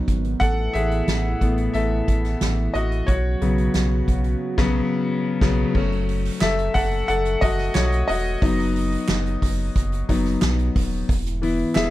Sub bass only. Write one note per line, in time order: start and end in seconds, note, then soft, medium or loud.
0.08 0.35 G#1 medium
0.41 0.68 A1 loud
0.75 1.02 A1 medium
1.07 1.35 A1 medium
1.41 1.69 A1 medium
1.74 2.02 A1 medium
2.08 2.35 A1 medium
2.41 2.69 A1 loud
2.75 3.02 A1 medium
3.08 3.35 B1 medium
3.41 3.69 B1 loud
3.75 4.02 B1 loud
4.08 4.35 B1 medium
4.58 4.81 B1 loud
5.41 5.64 B1 loud
5.75 6.30 F#1 loud
6.41 6.69 F#1 loud
6.75 7.03 F#1 medium
7.09 7.36 F#1 loud
7.42 7.69 F#1 medium
7.76 8.03 B1 loud
8.09 8.36 E1 medium
8.42 8.97 F#1 loud
9.09 9.37 F#1 medium
9.42 9.70 F#1 medium
9.76 10.03 F#1 loud
10.09 10.37 F#1 medium
10.43 10.70 B1 loud
10.76 11.03 D#1 medium
11.09 11.64 E1 loud
11.76 11.90 E1 medium